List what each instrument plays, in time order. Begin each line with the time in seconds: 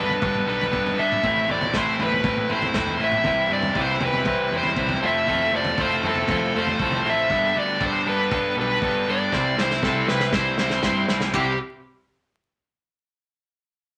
Already playing: picked electric bass G1, distorted electric guitar G2 D3, clean electric guitar G3 B3 D4 A4
0.00 lead electric guitar B4
0.09 floor tom
0.21 picked electric bass G1, distorted electric guitar G2 D3, clean electric guitar G3 B3 D4 A4, kick, floor tom
0.35 mid tom
0.46 picked electric bass B1, distorted electric guitar G2 D3, clean electric guitar G3 B3 D4 A4, lead electric guitar B4
0.61 floor tom
0.71 picked electric bass G1, distorted electric guitar G2 D3, clean electric guitar G3 B3 D4 A4, kick
0.86 floor tom
0.97 picked electric bass G#1, distorted electric guitar G2 D3, clean electric guitar G3 B3 D4 A4, lead electric guitar E5
1.12 mid tom
1.23 picked electric bass A1, clean electric guitar A2 A3 C4 E4 B4, distorted electric guitar E3, kick, floor tom
1.48 picked electric bass A1, clean electric guitar A2 A3 C4 E4 B4, distorted electric guitar E3, lead electric guitar D5, floor tom
1.61 floor tom
1.73 picked electric bass A1, clean electric guitar A2 A3 C4 E4 B4, distorted electric guitar E3, lead electric guitar C5, kick, snare
1.98 picked electric bass A1, clean electric guitar A2 A3 C4 E4 B4, distorted electric guitar E3, floor tom
2.03 lead electric guitar B4
2.12 floor tom
2.23 picked electric bass A1, clean electric guitar A2 A3 C4 E4 B4, distorted electric guitar E3, kick, floor tom
2.37 mid tom
2.48 picked electric bass A1, clean electric guitar A2 A3 C4 E4 B4, distorted electric guitar E3, lead electric guitar C5, mid tom
2.62 floor tom
2.74 picked electric bass E2, clean electric guitar A2 A3 C4 E4 B4, distorted electric guitar E3, kick, snare, mid tom
2.86 floor tom
2.99 picked electric bass A1, clean electric guitar A2 A3 C4 E4 B4, distorted electric guitar E3
3.04 lead electric guitar E5
3.12 mid tom
3.23 picked electric bass C2, clean electric guitar C3 E3 G3 C4 E4 B4, kick, floor tom
3.49 picked electric bass G2, clean electric guitar C3 E3 G3 C4 E4 B4
3.53 lead electric guitar D5
3.62 floor tom
3.75 picked electric bass C2, clean electric guitar C3 E3 G3 C4 E4 B4, kick
3.81 lead electric guitar C5
4.00 picked electric bass C2, clean electric guitar C3 E3 G3 C4 E4 B4, floor tom
4.05 lead electric guitar B4
4.13 floor tom
4.25 picked electric bass C2, clean electric guitar C3 E3 G3 C4 E4 B4, kick, floor tom
4.50 picked electric bass E2, clean electric guitar C3 E3 G3 C4 E4 B4
4.57 lead electric guitar C5
4.63 floor tom
4.76 picked electric bass C2, clean electric guitar C3 E3 G3 C4 E4 B4, kick
4.88 floor tom
5.01 picked electric bass F1, clean electric guitar F3 A3 C4 E4 A4, distorted electric guitar F4
5.06 lead electric guitar E5
5.27 picked electric bass F1, clean electric guitar F3 A3 C4 E4 A4, distorted electric guitar F4, kick, floor tom
5.52 picked electric bass F1, clean electric guitar F3 A3 C4 E4 A4, distorted electric guitar F4, lead electric guitar D5
5.65 floor tom
5.78 picked electric bass F1, clean electric guitar F3 A3 C4 E4 A4, distorted electric guitar F4, lead electric guitar C5, kick
6.02 picked electric bass F1, clean electric guitar F3 A3 C4 E4 A4, distorted electric guitar F4, floor tom
6.09 lead electric guitar A4
6.15 floor tom
6.28 picked electric bass F1, clean electric guitar F3 A3 C4 E4 A4, distorted electric guitar F4, kick, floor tom
6.53 picked electric bass F1, clean electric guitar F3 A3 C4 E4 A4, distorted electric guitar F4
6.58 lead electric guitar C5
6.67 floor tom
6.79 picked electric bass C2, clean electric guitar F3 A3 C4 E4 A4, distorted electric guitar F4, kick
6.92 floor tom
7.05 picked electric bass A1, clean electric guitar F3 A3 C4 E4 A4, distorted electric guitar F4
7.09 lead electric guitar E5
7.30 picked electric bass G1, distorted electric guitar G2 D3, clean electric guitar G3 B3 D4 A4, kick
7.55 picked electric bass D2, distorted electric guitar G2 D3, clean electric guitar G3 B3 D4 A4
7.59 lead electric guitar D5
7.80 picked electric bass G1, distorted electric guitar G2 D3, clean electric guitar G3 B3 D4 A4, kick
7.86 lead electric guitar C5
8.05 picked electric bass G1, distorted electric guitar G2 D3, clean electric guitar G3 B3 D4 A4, lead electric guitar B4
8.31 picked electric bass G1, distorted electric guitar G2 D3, clean electric guitar G3 B3 D4 A4, kick
8.55 picked electric bass B1, distorted electric guitar G2 D3, clean electric guitar G3 B3 D4 A4
8.61 lead electric guitar B4
8.81 picked electric bass G1, distorted electric guitar G2 D3, clean electric guitar G3 B3 D4 A4, kick
9.06 picked electric bass G1, distorted electric guitar G2 D3, clean electric guitar G3 B3 D4 A4
9.10 lead electric guitar D5
9.32 picked electric bass C2, clean electric guitar C3 E3 G3 C4 E4 C5, kick, snare
9.57 picked electric bass C2, clean electric guitar C3 E3 G3 C4 E4 C5, lead electric guitar C5, snare
9.71 snare
9.82 picked electric bass C2, clean electric guitar C3 E3 G3 C4 E4 C5, lead electric guitar A4, kick, snare
10.08 picked electric bass C2, clean electric guitar C3 E3 G3 C4 E4 C5, lead electric guitar B4, snare
10.20 snare
10.33 picked electric bass C2, clean electric guitar C3 E3 G3 C4 E4 C5, lead electric guitar C5, kick, snare
10.58 picked electric bass C2, clean electric guitar C3 E3 G3 C4 E4 C5, snare
10.70 snare
10.83 picked electric bass G2, clean electric guitar C3 E3 G3 C4 E4 C5, kick, snare
11.08 picked electric bass C2, clean electric guitar C3 E3 G3 C4 E4 C5, snare
11.21 snare
11.33 picked electric bass C2, clean electric guitar C3 E3 G3 C4 E4 C5, lead electric guitar G4, kick, ride bell